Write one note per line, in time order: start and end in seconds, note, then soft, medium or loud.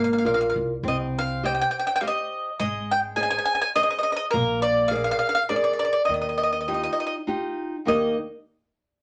0.00 0.22 G#1 medium
0.00 0.23 A#3 medium
0.04 0.08 F5 medium
0.13 0.16 F5 soft
0.18 0.22 F5 medium
0.25 0.53 A#1 medium
0.25 0.72 F4 soft
0.25 0.73 A#4 soft
0.25 0.73 D5 soft
0.25 0.30 F5 medium
0.34 0.38 F5 medium
0.41 0.45 F5 medium
0.50 0.54 F5 soft
0.56 0.82 C2 medium
0.83 1.60 C2 loud
0.83 1.42 C4 medium
0.88 0.96 D#5 medium
1.19 1.43 F5 medium
1.43 1.90 G4 soft
1.43 1.91 C5 soft
1.43 1.91 D#5 medium
1.43 1.52 G5 medium
1.55 1.60 G5 medium
1.61 1.68 G5 medium
1.71 1.76 G5 medium
1.79 1.84 G5 medium
1.87 1.91 G5 medium
1.96 1.99 G5 medium
2.01 2.48 G4 soft
2.01 2.48 C5 soft
2.01 2.49 D#5 medium
2.01 2.05 F5 medium
2.08 2.58 D#5 medium
2.60 3.35 G#1 medium
2.60 3.16 G#3 soft
2.60 2.91 D#5 medium
2.91 2.99 G5 medium
3.16 3.64 G#4 soft
3.16 3.64 C5 soft
3.16 3.64 D#5 medium
3.16 3.22 G#5 medium
3.23 3.29 G#5 medium
3.31 3.37 G#5 medium
3.38 3.44 G#5 medium
3.45 3.54 G#5 medium
3.55 3.60 G#5 medium
3.62 3.69 G#5 medium
3.76 4.22 G#4 medium
3.76 4.22 C5 soft
3.76 3.82 D#5 medium
3.76 4.23 D#5 medium
3.83 3.89 D#5 medium
3.91 3.97 D#5 medium
3.99 4.02 D#5 medium
4.03 4.11 D#5 medium
4.12 4.15 D#5 medium
4.16 4.25 D#5 medium
4.31 5.10 A#1 loud
4.31 4.90 A#3 medium
4.31 4.60 A#4 medium
4.62 4.89 D5 medium
4.88 5.38 G#4 medium
4.88 5.38 A#4 soft
4.88 5.38 D5 medium
4.88 4.94 F5 medium
4.95 5.03 F5 medium
5.04 5.10 F5 medium
5.11 5.18 F5 medium
5.19 5.28 F5 medium
5.29 5.34 F5 medium
5.35 5.43 F5 medium
5.49 5.97 G#4 soft
5.49 5.97 A#4 soft
5.49 5.55 D5 medium
5.49 5.97 D5 medium
5.56 5.63 D5 medium
5.64 5.72 D5 medium
5.73 5.78 D5 medium
5.79 5.84 D5 medium
5.85 5.92 D5 medium
5.93 6.02 D5 medium
6.05 6.86 D#2 medium
6.05 6.66 D#3 soft
6.05 6.13 D#5 medium
6.14 6.20 D#5 medium
6.21 6.28 D#5 soft
6.29 6.36 D#5 soft
6.38 6.42 D#5 medium
6.43 6.51 D#5 medium
6.52 6.59 D#5 soft
6.61 6.67 D#5 soft
6.68 7.16 D#4 soft
6.68 7.16 F4 soft
6.68 7.16 G4 soft
6.68 6.73 D#5 soft
6.74 6.82 D#5 soft
6.83 6.92 D#5 medium
6.93 6.99 D#5 soft
7.00 7.05 D#5 medium
7.07 7.14 D#5 medium
7.27 7.76 D#4 soft
7.27 7.76 F4 soft
7.27 7.76 G4 medium
7.85 8.17 D#2 medium
7.85 8.15 D#3 soft
7.85 8.16 A#3 soft
7.85 8.16 D#4 soft
7.85 8.16 G4 soft
7.85 8.17 A#4 medium
7.85 8.17 D#5 medium